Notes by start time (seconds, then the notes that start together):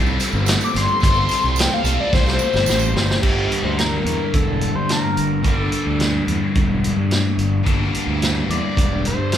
Already playing: C2 G3 C4 F4 A4
0.07 tambourine
0.20 closed hi-hat, tambourine
0.33 G1, tambourine
0.46 snare, closed hi-hat, tambourine
0.61 D6, tambourine
0.75 G1 C6, snare, closed hi-hat, tambourine
0.88 tambourine
1.00 G1 G3 C4 F4, kick, closed hi-hat, tambourine
1.05 A4
1.14 tambourine
1.29 closed hi-hat, tambourine
1.42 C2, tambourine
1.56 G5, closed hi-hat, tambourine
1.60 snare
1.70 F5, tambourine
1.83 C2 G3 C4 F4 A4, closed hi-hat, tambourine
2.00 D5
2.13 C2 C5, kick, snare, tambourine
2.26 snare, tambourine
2.39 tambourine
2.53 G1, snare, tambourine
2.66 A1, snare, tambourine
2.79 tambourine
2.94 G1, snare
3.08 snare, tambourine
3.21 G1 G2 D3 G3 A#3 D4 G4, kick, crash
3.52 closed hi-hat
3.63 D2 C5
3.78 A#4, snare, closed hi-hat
4.05 E2 A#4, closed hi-hat
4.34 E1 A4, kick, closed hi-hat
4.61 closed hi-hat
4.75 G2 C5
4.89 A#4, snare, closed hi-hat
5.17 G1, closed hi-hat
5.43 G1 G2 D3 G3 A#3 D4 G4, kick, closed hi-hat
5.47 A4
5.72 closed hi-hat
5.86 D2
6.00 snare, closed hi-hat
6.28 E2, closed hi-hat
6.55 E1, kick, closed hi-hat
6.84 closed hi-hat
6.97 G2
7.11 snare, closed hi-hat
7.38 G1, closed hi-hat
7.63 G1 G2 D3 G3 A#3 D4 G4, kick, closed hi-hat
7.94 closed hi-hat
8.07 D2
8.22 snare, closed hi-hat
8.49 E2 D5, closed hi-hat
8.77 E1, kick, closed hi-hat
9.05 C5, closed hi-hat
9.18 G2
9.32 snare, closed hi-hat